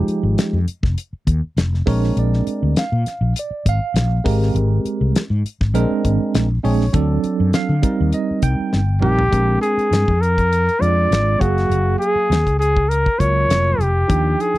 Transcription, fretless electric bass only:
0.08 muted fretless electric bass stroke
0.23 G#1
0.53 F2
0.68 muted fretless electric bass stroke
0.83 F1
1.13 muted fretless electric bass stroke
1.27 D#2
1.44 muted fretless electric bass stroke
1.56 F1
1.87 A#1
2.17 A#1
2.47 muted fretless electric bass stroke
2.63 D2
2.92 A#2
3.06 muted fretless electric bass stroke
3.21 A#1
3.51 muted fretless electric bass stroke
3.65 G#1
3.80 muted fretless electric bass stroke
3.94 A#1
4.25 G#1
4.55 G#1
4.85 muted fretless electric bass stroke
5.01 C2
5.30 G#2
5.45 muted fretless electric bass stroke
5.61 G#1
5.74 A#1
6.04 G#1
6.21 muted fretless electric bass stroke
6.35 A#1
6.64 A#1
6.94 D2
7.24 muted fretless electric bass stroke
7.40 F#2
7.69 D3
8.01 D#2
8.31 muted fretless electric bass stroke
8.43 C2
8.59 muted fretless electric bass stroke
8.74 G1
9.03 A#1
9.32 A#1
9.77 muted fretless electric bass stroke
9.91 G2
10.08 F2
10.81 F2
11.11 G#1
11.41 F#1
11.70 F#1
12.15 muted fretless electric bass stroke
12.30 D#2
12.47 C#2
13.20 C#2
13.49 F1
13.78 F1
14.10 D#2
14.54 muted fretless electric bass stroke

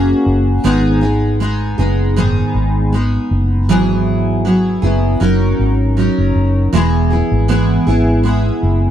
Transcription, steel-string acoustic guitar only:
Already playing: A#3 C#4 F#4 G#4
0.64 G#2 D#3 G#3 B3 D#4 G#4
1.01 G#3 B3 D#4 G#4
1.40 G#3 B3 D#4 G#4
1.78 G#3 B3 D#4 G#4
2.16 G#2 D#3 G#3 B3 D#4 G#4
2.92 G#3 B3 D#4 G#4
3.69 G#2 E3 F#3 B3 E4 G#4
4.45 F#3 B3 E4 G#4
4.82 F#3 B3 E4 G#4
5.20 F#3 C#4 D#4 A#4
5.97 F#3 C#4 D#4 A#4
6.73 E3 G#3 B3 E4 G#4
7.10 B3 E4 G#4
7.48 E3 G#3 B3 E4 G#4
7.87 B3 E4 G#4
8.23 G#3 B3 E4 G#4

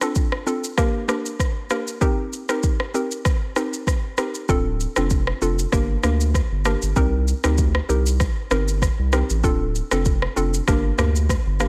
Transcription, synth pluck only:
0.02 C4 D4 F4 A4
0.47 C4 D4 F4 A4
0.77 A#3 D4 G4 A#4
1.08 A#3 D4 G4 A#4
1.70 A#3 D4 G4 A#4
2.01 C4 D#4 G4 A#4
2.49 C4 D#4 G4 A#4
2.94 C4 D#4 G4 A#4
3.56 C4 D#4 G4 A#4
4.18 C4 D#4 G4 A#4
4.49 C4 D4 F4 A4
4.97 C4 D4 F4 A4
5.42 C4 D4 F4 A4
5.72 A#3 D4 G4 A#4
6.03 A#3 D4 G4 A#4
6.65 A#3 D4 G4 A#4
6.96 C4 D#4 G4 A#4
7.44 C4 D#4 G4 A#4
7.89 C4 D#4 G4 A#4
8.51 C4 D#4 G4 A#4
9.13 C4 D#4 G4 A#4
9.43 C4 D4 F4 A4
9.92 C4 D4 F4 A4
10.36 C4 D4 F4 A4
10.68 A#3 D4 G4 A#4
10.98 A#3 D4 G4 A#4
11.60 A#3 D4 G4 A#4

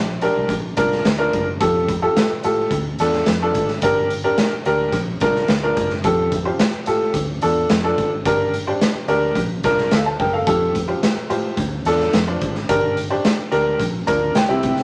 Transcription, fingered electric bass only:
Already playing: A#1
0.37 C2
0.49 A#1
0.78 C2
1.06 D2
1.34 F#1
1.61 F2
2.32 muted fingered electric bass stroke
2.45 A2
2.71 D2
3.00 E2
3.28 F2
3.55 G#1
3.83 G1
4.53 muted fingered electric bass stroke
4.66 D2
4.93 A#1
5.22 C2
5.49 D2
5.77 F#1
6.04 F2
6.74 muted fingered electric bass stroke
6.88 A2
7.15 D2
7.43 E2
7.70 F2
7.99 G#1
8.26 G1
8.95 muted fingered electric bass stroke
9.08 D2
9.36 A#1
9.65 C2
9.92 D2
10.20 F#1
10.47 F2
11.17 muted fingered electric bass stroke
11.30 A2
11.58 D2
11.85 E2
12.13 F2
12.42 G#1
12.70 G1
13.39 muted fingered electric bass stroke
13.52 D2
13.80 A#1
14.09 D2
14.35 C2
14.49 C2
14.64 C3

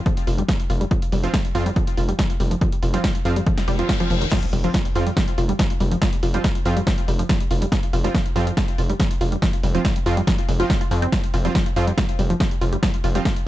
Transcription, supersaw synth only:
1.24 F3 C4 F4
1.55 F3 C4 F4
2.94 F3 C4 F4
3.25 F3 C4 F4
3.79 F3 C4 F4
4.00 F3 C4 F4
4.64 F3 C4 F4
4.95 F3 C4 F4
6.34 F3 C4 F4
6.66 F3 C4 F4
8.04 F3 C4 F4
8.36 F3 C4 F4
9.75 F3 C4 F4
10.06 F3 C4 F4
10.60 F3 C4 F4
11.45 F3 C4 F4
11.76 F3 C4 F4
13.15 F3 C4 F4

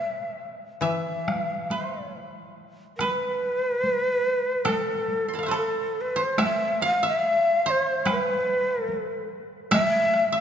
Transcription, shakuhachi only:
Already playing: E5
0.85 E5
2.97 B4
4.65 A4
5.57 A4
6.01 B4
6.24 C5
6.43 E5
6.86 F5
7.08 E5
7.70 C5
8.11 B4
8.72 A#4
8.87 A4
9.73 E5

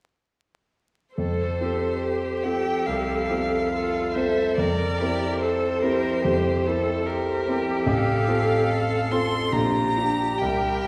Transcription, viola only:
1.18 A4
2.03 G4
2.45 A4
3.72 A4
4.15 C5
4.59 A#4
5.42 A4
5.82 G4
6.24 G4
6.67 A4
7.06 A#4
7.87 A4
9.53 G4
10.42 A#4

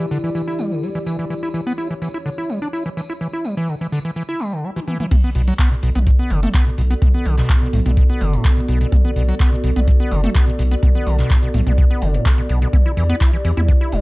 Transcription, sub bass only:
5.35 B1
5.83 B1
5.95 B1
6.30 F#1
6.78 B1
7.26 B1
7.73 B1
7.86 B1
8.21 F#1
8.68 B1
9.16 B1
9.64 B1
9.76 B1
10.11 F#1
10.59 B1
11.06 B1
11.54 B1
11.67 B1
12.02 F#1
12.49 B1
12.97 E2
13.45 E2
13.57 E2
13.92 E1

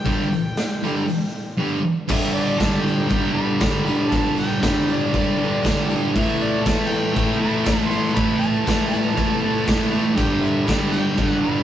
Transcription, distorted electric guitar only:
0.05 G2 D3 G3
0.83 G2 D3 G3
1.57 G2 D3 G3
2.08 G2 D3
2.12 G3
2.59 G2 D3
2.63 G3
3.08 G2 D3
3.12 G3
3.34 G3
3.39 D3
3.60 G2 D3 G3
3.84 G3
3.89 D3
4.10 G2 D3
4.15 G3
4.60 G2 D3
4.64 G3
5.13 G2 D3
5.17 G3
5.38 G3
5.43 D3
5.64 G2 D3
5.69 G3
5.90 G3
5.95 D3
6.14 A2 E3
6.19 A3
6.64 A2 E3 A3
7.14 A2 E3
7.19 A3
7.40 A3
7.45 E3
7.65 A2 E3 A3
7.89 A3
7.94 E3
8.14 A2 E3
8.19 A3
8.65 A2 E3
8.70 A3
9.14 A2 E3
9.18 A3
9.41 A3
9.45 E3
9.65 A2 E3
9.69 A3
9.90 A3
9.95 E3
10.14 G2 D3
10.18 G3
10.65 G2 D3
10.70 G3
11.17 G2 D3
11.22 G3
11.43 G3
11.48 D3

